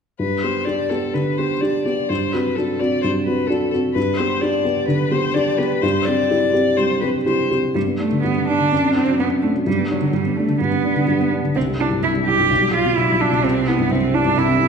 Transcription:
0.19 1.11 G2 soft
0.19 0.44 B4 soft
0.42 0.65 B3 soft
0.42 0.65 G4 soft
0.42 0.67 C5 soft
0.65 0.88 D4 soft
0.65 0.88 G4 soft
0.65 0.91 D5 soft
0.90 1.12 B3 soft
0.90 1.12 G4 soft
0.90 1.15 A4 soft
1.14 1.52 D3 soft
1.14 1.39 B4 soft
1.38 1.60 B3 soft
1.38 1.60 G4 soft
1.38 1.62 C5 soft
1.60 1.83 D4 soft
1.60 1.84 G4 soft
1.60 1.84 D5 soft
1.85 2.07 B3 soft
1.85 2.07 G4 soft
1.85 2.10 D5 soft
2.09 3.01 G2 soft
2.09 2.34 C5 soft
2.32 2.54 C4 soft
2.32 2.55 F#4 soft
2.32 2.57 B4 soft
2.55 2.78 D4 soft
2.55 2.78 F#4 soft
2.55 2.81 A4 soft
2.80 3.01 C4 soft
2.80 3.02 F#4 soft
2.80 3.02 D5 soft
3.02 3.94 G2 soft
3.02 3.10 C5 soft
3.25 3.48 C4 soft
3.25 3.48 F#4 soft
3.25 3.49 B4 soft
3.47 3.70 D4 soft
3.47 3.71 F#4 soft
3.47 3.70 A4 soft
3.71 3.94 C4 soft
3.71 3.94 F#4 soft
3.71 3.79 A4 soft
3.93 4.86 G2 soft
3.93 4.18 B4 soft
4.17 4.40 B3 soft
4.17 4.40 G4 soft
4.17 4.43 C5 soft
4.41 4.63 D4 soft
4.41 4.63 G4 soft
4.41 4.87 D5 soft
4.64 4.86 B3 soft
4.64 4.86 G4 soft
4.88 5.26 D3 soft
4.88 5.13 B4 soft
5.11 5.33 B3 soft
5.11 5.33 G4 soft
5.11 5.36 C5 soft
5.34 5.56 D4 soft
5.34 5.57 G4 soft
5.34 5.59 D5 soft
5.57 5.80 B3 soft
5.57 5.80 G4 soft
5.57 5.83 B4 soft
5.81 6.75 G2 soft
5.81 6.07 C5 soft
6.06 6.28 C4 soft
6.06 6.29 G4 soft
6.06 6.78 D5 soft
6.30 6.52 E4 soft
6.30 6.52 G4 soft
6.53 6.75 C4 soft
6.53 6.75 G4 soft
6.76 7.17 G3 soft
6.76 7.00 C5 soft
7.01 7.24 C4 soft
7.01 7.24 G4 soft
7.01 7.09 B4 soft
7.26 7.48 E4 soft
7.26 7.48 G4 soft
7.26 7.54 C5 soft
7.51 7.73 C4 soft
7.51 7.73 G4 soft
7.75 8.23 G2 soft
7.75 7.83 G3 soft
7.86 8.06 B3 soft
7.98 8.22 A3 soft
7.98 8.19 D4 soft
8.12 8.31 D3 soft
8.22 8.70 G2 soft
8.22 8.46 B3 soft
8.37 8.55 B3 soft
8.47 8.94 D4 soft
8.47 8.67 D4 soft
8.60 8.72 D3 soft
8.72 9.17 F#2 soft
8.83 9.02 C4 soft
8.95 9.18 C4 soft
8.95 9.15 D4 soft
9.08 9.26 F#3 soft
9.19 9.65 F#2 soft
9.19 9.27 B3 soft
9.31 9.50 C4 soft
9.42 9.50 A3 soft
9.42 9.62 D4 soft
9.54 9.66 F#3 soft
9.66 10.12 G2 soft
9.66 9.90 G3 soft
9.78 9.97 B3 soft
9.90 10.16 F#3 soft
9.90 10.09 D4 soft
10.01 10.21 D3 soft
10.13 10.59 G2 soft
10.13 10.38 G3 soft
10.26 10.44 B3 soft
10.37 10.60 A3 soft
10.37 10.56 D4 soft
10.49 10.68 D3 soft
10.60 11.06 G2 soft
10.60 11.30 B3 soft
10.72 10.91 B3 soft
10.84 11.03 D4 soft
10.96 11.15 D3 soft
11.08 11.54 G2 soft
11.20 11.39 B3 soft
11.32 11.51 D4 soft
11.44 11.56 D3 soft
11.55 12.01 C2 soft
11.55 11.64 C4 medium
11.67 11.86 G3 soft
11.79 11.88 D4 soft
11.79 11.98 E4 soft
11.91 12.10 G2 soft
12.03 12.48 C2 soft
12.03 12.11 E4 soft
12.14 12.33 G3 soft
12.26 12.45 E4 soft
12.26 12.73 G4 medium
12.38 12.50 G2 soft
12.50 12.95 B1 soft
12.61 12.80 G3 soft
12.73 12.98 F4 medium
12.73 12.92 F4 soft
12.85 13.04 B2 soft
12.97 13.43 B1 soft
12.97 13.22 E4 soft
13.09 13.28 G3 soft
13.20 13.45 D4 medium
13.20 13.39 F4 soft
13.32 13.44 B2 soft
13.44 13.89 C2 soft
13.44 13.69 C4 medium
13.56 13.74 C4 soft
13.68 13.93 B3 soft
13.68 13.86 E4 soft
13.78 13.97 G2 soft
13.91 14.35 C2 soft
13.91 14.16 C4 medium
14.01 14.20 C4 soft
14.13 14.39 D4 medium
14.13 14.32 E4 soft
14.25 14.43 G2 soft
14.36 14.68 C2 soft
14.36 14.68 E4 medium
14.48 14.67 C4 soft
14.59 14.68 E4 soft

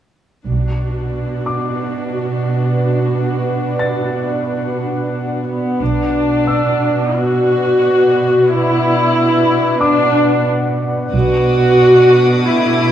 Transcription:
0.46 1.09 B1 soft
0.46 5.56 B2 soft
0.46 5.43 D4 soft
0.46 5.43 F#4 soft
0.46 5.76 B4 soft
0.46 5.76 D5 soft
0.46 5.76 F#5 soft
1.46 3.43 D6 soft
3.79 5.76 A6 soft
5.47 5.78 B3 soft
5.80 6.43 B1 soft
5.80 11.10 B2 soft
5.80 7.13 D4 soft
5.80 11.10 B4 soft
5.80 11.10 D5 soft
5.80 11.10 F#5 soft
6.47 8.43 E6 soft
7.14 8.47 F#4 medium
8.48 9.81 E4 medium
9.80 10.45 D4 medium
9.80 11.76 D6 soft
11.12 11.76 B1 medium
11.12 12.92 B2 medium
11.12 12.92 D4 soft
11.12 12.43 F#4 medium
11.12 12.92 A4 soft
11.12 12.92 A5 soft
11.12 12.92 D6 soft
11.12 12.92 D#6 soft
12.46 12.92 E4 medium

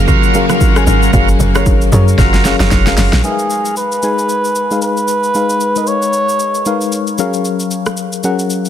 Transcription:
0.00 3.20 C#3 medium
0.00 0.34 F#3 loud
0.00 3.20 F#3 medium
0.00 3.20 A#3 medium
0.00 0.35 C#4 medium
0.00 0.35 G#4 medium
0.00 0.36 A#4 medium
0.00 0.36 F5 loud
0.00 3.20 F5 loud
0.08 0.46 F4 loud
0.08 0.46 F#4 medium
0.08 0.46 A#4 loud
0.08 kick loud
0.08 low conga medium
0.08 shaker medium
0.23 shaker medium
0.34 0.67 F#3 medium
0.34 0.67 C#4 medium
0.34 0.67 G#4 medium
0.34 0.67 A#4 medium
0.34 0.68 F5 loud
0.34 shaker loud
0.49 0.84 F4 medium
0.49 0.84 F#4 medium
0.49 0.85 A#4 medium
0.49 cross-stick medium
0.49 low bongo medium
0.49 shaker medium
0.61 kick medium
0.61 high bongo medium
0.61 shaker medium
0.76 1.07 F#3 medium
0.76 1.07 C#4 medium
0.76 1.07 G#4 medium
0.76 1.07 A#4 medium
0.76 1.07 G#5 medium
0.76 cross-stick medium
0.76 shaker medium
0.87 1.09 G#1 loud
0.87 1.11 F4 medium
0.87 1.12 F#4 medium
0.87 1.12 A#4 medium
0.87 high bongo medium
0.87 shaker loud
1.02 shaker medium
1.13 1.36 F#1 loud
1.13 1.46 F#3 loud
1.13 1.46 C#4 medium
1.13 1.29 F4 medium
1.13 1.29 F#4 medium
1.13 1.46 G#4 medium
1.13 1.29 A#4 loud
1.13 1.46 A#4 medium
1.13 1.46 F5 loud
1.13 kick loud
1.13 low conga medium
1.13 shaker medium
1.28 shaker medium
1.40 1.85 F#1 loud
1.40 low conga medium
1.40 shaker medium
1.55 1.86 F#3 medium
1.55 1.86 C#4 medium
1.55 1.66 F4 medium
1.55 1.67 F#4 medium
1.55 1.86 G#4 medium
1.55 1.67 A#4 medium
1.55 1.86 A#4 medium
1.55 1.86 C#5 loud
1.55 cross-stick loud
1.55 low bongo medium
1.55 shaker medium
1.66 kick loud
1.66 high bongo medium
1.66 shaker medium
1.82 shaker medium
1.92 2.15 F#2 loud
1.92 2.36 F#3 medium
1.92 2.36 C#4 medium
1.92 2.36 G#4 medium
1.92 2.37 A#4 medium
1.92 2.37 C#5 loud
1.92 low bongo medium
1.92 shaker medium
2.08 shaker medium
2.18 2.54 F#1 loud
2.18 2.56 F4 loud
2.18 2.57 F#4 medium
2.18 2.57 A#4 loud
2.18 kick loud
2.18 snare medium
2.18 low conga medium
2.18 shaker medium
2.34 snare medium
2.34 shaker medium
2.45 2.77 F#3 medium
2.45 2.78 C#4 medium
2.45 2.78 G#4 medium
2.45 2.78 A#4 medium
2.45 2.78 F5 medium
2.45 snare medium
2.45 shaker loud
2.60 2.70 F#1 loud
2.60 2.95 F4 medium
2.60 2.95 F#4 medium
2.60 2.95 A#4 medium
2.60 snare medium
2.60 low bongo medium
2.60 shaker medium
2.71 2.94 F1 medium
2.71 kick medium
2.71 snare medium
2.71 high bongo medium
2.71 shaker medium
2.87 3.17 F#3 medium
2.87 3.17 C#4 medium
2.87 3.18 G#4 medium
2.87 3.18 A#4 medium
2.87 3.18 F5 loud
2.87 snare medium
2.87 shaker medium
2.97 3.11 F#1 loud
2.97 3.22 F4 medium
2.97 3.22 F#4 medium
2.97 3.22 A#4 medium
2.97 snare loud
2.97 open hi-hat medium
2.97 shaker loud
3.13 3.22 A#1 medium
3.13 snare loud
3.13 shaker soft
3.24 3.89 G#3 medium
3.24 3.89 D#4 medium
3.24 3.73 G#4 medium
3.24 3.89 A#4 medium
3.24 3.89 B4 medium
3.24 3.32 E5 medium
3.24 shaker medium
3.32 3.93 F5 medium
3.39 shaker medium
3.50 shaker medium
3.65 shaker medium
3.76 4.78 B4 loud
3.76 shaker medium
3.92 shaker medium
4.03 4.55 G#3 medium
4.03 4.56 D#4 medium
4.03 4.56 G#4 medium
4.03 4.56 B4 medium
4.03 4.56 G#5 medium
4.03 shaker medium
4.19 shaker medium
4.29 shaker medium
4.44 shaker medium
4.55 shaker medium
4.71 5.23 G#3 medium
4.71 5.24 D#4 medium
4.71 5.24 G#4 medium
4.71 5.24 B4 medium
4.71 5.24 F5 medium
4.71 shaker medium
4.82 5.89 B4 loud
4.82 shaker medium
4.97 shaker soft
5.08 shaker loud
5.23 shaker soft
5.34 5.67 G#3 medium
5.34 5.67 D#4 medium
5.34 5.67 G#4 medium
5.34 5.67 B4 medium
5.34 5.68 F5 medium
5.34 shaker medium
5.50 shaker medium
5.61 shaker medium
5.76 6.49 G#3 medium
5.76 6.49 D#4 medium
5.76 6.49 A#4 medium
5.76 6.49 B4 medium
5.76 6.50 D#5 medium
5.76 shaker medium
5.87 7.19 C#5 loud
5.87 shaker medium
6.02 shaker medium
6.13 shaker medium
6.29 shaker medium
6.39 shaker medium
6.55 shaker soft
6.66 7.19 G#3 medium
6.66 7.19 D#4 medium
6.66 7.18 A#4 medium
6.66 7.19 B4 medium
6.66 7.19 F5 medium
6.66 shaker medium
6.81 shaker medium
6.92 shaker medium
7.07 shaker soft
7.18 8.04 F#3 medium
7.18 8.04 C#4 medium
7.18 8.04 G#4 medium
7.18 8.04 A#4 medium
7.18 8.04 F5 loud
7.18 shaker loud
7.33 shaker soft
7.45 shaker medium
7.60 shaker medium
7.71 shaker medium
7.86 cross-stick medium
7.86 shaker medium
7.97 shaker medium
8.12 shaker medium
8.24 8.69 F#3 medium
8.24 8.69 C#4 medium
8.24 8.69 G#4 medium
8.24 8.69 A#4 medium
8.24 8.69 F#5 medium
8.24 shaker medium
8.39 shaker medium
8.50 shaker medium
8.65 shaker soft

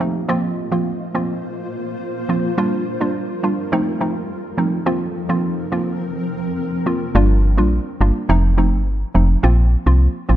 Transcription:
0.00 0.21 F3 medium
0.00 0.28 A3 medium
0.00 0.21 A3 medium
0.00 0.21 C4 medium
0.00 0.21 D#4 medium
0.00 3.68 F4 medium
0.00 0.28 D#5 medium
0.29 0.68 F3 medium
0.29 0.68 A#3 medium
0.29 2.56 A#3 medium
0.29 0.69 C4 medium
0.29 0.69 F4 loud
0.29 2.56 C5 medium
0.72 0.92 F3 medium
0.72 0.93 A#3 medium
0.72 0.93 C4 medium
0.72 0.93 F4 medium
1.14 1.35 F3 medium
1.14 1.35 A#3 medium
1.14 1.36 C4 medium
1.14 1.36 F4 medium
2.29 2.50 F3 medium
2.29 2.50 A#3 medium
2.29 2.50 C4 medium
2.29 2.50 F4 medium
2.58 2.97 G3 medium
2.58 3.71 G3 medium
2.58 2.97 A#3 medium
2.58 2.97 D4 medium
2.58 2.97 F4 loud
2.58 3.71 A#4 medium
3.01 3.21 G3 medium
3.01 3.21 A#3 medium
3.01 3.21 D4 medium
3.01 3.22 F4 medium
3.43 3.64 G3 medium
3.43 3.64 A#3 medium
3.43 3.64 D4 medium
3.43 3.64 F4 medium
3.72 7.12 F3 medium
3.72 3.98 F3 medium
3.72 3.99 A3 medium
3.72 3.99 C4 medium
3.72 4.85 D#4 medium
3.72 3.99 D#4 loud
3.72 4.85 A4 medium
4.00 4.21 F3 medium
4.00 4.21 A3 medium
4.00 4.21 C4 medium
4.00 4.22 D#4 medium
4.58 4.78 F3 medium
4.58 4.78 A3 medium
4.58 4.79 C4 medium
4.58 4.79 D#4 medium
4.86 5.26 F3 medium
4.86 5.26 A#3 medium
4.86 5.26 C4 medium
4.86 7.13 C4 medium
4.86 5.26 F4 loud
4.86 7.13 A#4 medium
5.29 5.50 F3 medium
5.29 5.50 A#3 medium
5.29 5.50 C4 medium
5.29 5.50 F4 medium
5.72 5.93 F3 medium
5.72 5.93 A#3 medium
5.72 5.93 C4 medium
5.72 5.93 F4 medium
6.86 7.07 F3 medium
6.86 7.07 A#3 medium
6.86 7.07 C4 medium
6.86 7.07 F4 medium
7.15 7.59 G1 loud
7.15 7.54 G3 medium
7.15 7.54 A#3 medium
7.15 7.55 D4 medium
7.15 7.55 F4 loud
7.57 7.80 A#1 medium
7.57 7.78 G3 medium
7.57 7.78 A#3 medium
7.57 7.79 D4 medium
7.57 7.79 F4 medium
8.01 8.12 G1 medium
8.01 8.21 G3 medium
8.01 8.21 A#3 medium
8.01 8.22 D4 medium
8.01 8.22 F4 medium
8.29 8.74 F1 loud
8.29 8.55 F3 medium
8.29 8.56 A3 medium
8.29 8.56 C4 medium
8.29 8.56 D#4 loud
8.58 8.78 F3 medium
8.58 8.78 A3 medium
8.58 8.79 C4 medium
8.58 8.79 D#4 medium
8.72 9.05 G1 medium
9.14 9.37 F1 medium
9.14 9.35 F3 medium
9.14 9.36 A3 medium
9.14 9.36 C4 medium
9.14 9.36 D#4 medium
9.43 9.76 A#1 loud
9.43 9.83 F3 medium
9.43 9.83 A#3 medium
9.43 9.83 C4 medium
9.43 9.83 F4 loud
9.86 10.08 C2 medium
9.86 10.07 F3 medium
9.86 10.07 A#3 medium
9.86 10.07 C4 medium
9.86 10.07 F4 medium
10.29 10.37 A1 medium
10.29 10.37 F3 medium
10.29 10.37 A#3 medium
10.29 10.37 C4 medium
10.29 10.37 F4 medium

